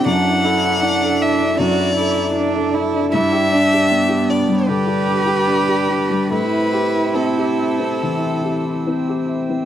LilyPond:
<<
  \new Staff \with { instrumentName = "Violin" } { \time 4/4 \key a \dorian \tempo 4 = 76 fis''4. e''8 d''4. r8 | e''4. d''8 b'2 | b'4 a'2~ a'8 r8 | }
  \new Staff \with { instrumentName = "Harmonium" } { \time 4/4 \key a \dorian << { <e' d''>1 | <d' d''>1 | <c' e''>1 | } \\ { a'1 | g'1~ | g'1 | } >> }
  \new Staff \with { instrumentName = "Cello" } { \time 4/4 \key a \dorian d'8 e'8 d'4 fis'8 e'8 d'8 e'8 | e'8 d'8 b4 g'2 | e'2.~ e'8 r8 | }
  \new Staff \with { instrumentName = "Upright piano" } { \time 4/4 \key a \dorian fis,16 e'16 a'16 e'16 d'16 a'16 e'16 d'16 fis,16 e'16 a'16 e'16 d'16 a'16 e'16 d'16 | g,16 g'16 d'16 g'16 d'16 g'16 d'16 g16 d16 g'16 d'16 g'16 d'16 g'16 d'16 g16 | a,16 e'16 g'16 e'16 c'16 g'16 e'16 c'16 e16 e'16 g'16 e'16 c'16 g'16 e'16 c'16 | }
>>